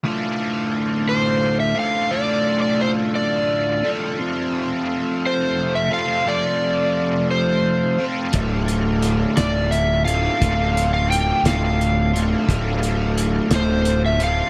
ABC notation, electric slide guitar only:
X:1
M:6/8
L:1/16
Q:3/8=58
K:Dm
V:1 name="Electric slide guitar"
z6 c3 e f2 | d3 d c2 d4 z2 | z6 c3 e f2 | d6 c4 z2 |
z6 d2 e2 f2- | f3 f g2 f4 z2 | z6 c3 e f2 |]